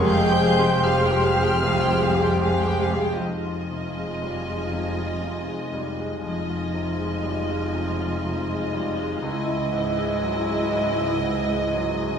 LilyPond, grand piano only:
\new Staff \with { instrumentName = "Grand piano" } { \clef bass \time 4/4 \key f \minor \tempo 4 = 79 \tuplet 3/2 { f,8 <aes g' c''>8 <aes g' c''>8 <aes g' c''>8 <aes g' c''>8 <aes g' c''>8 c,8 <aes g' c''>8 <aes g' c''>8 <aes g' c''>8 <aes g' c''>8 <aes g' c''>8 } | \tuplet 3/2 { f,8 f'8 c8 aes8 g8 aes8 c8 f'8 c8 aes8 g8 aes8 } | \tuplet 3/2 { f,8 f'8 c8 aes8 g8 aes8 c8 f'8 c8 aes8 g8 aes8 } | \tuplet 3/2 { des,8 fes'8 aes,8 aes8 ges8 aes8 aes,8 fes'8 aes,8 aes8 ges8 aes8 } | }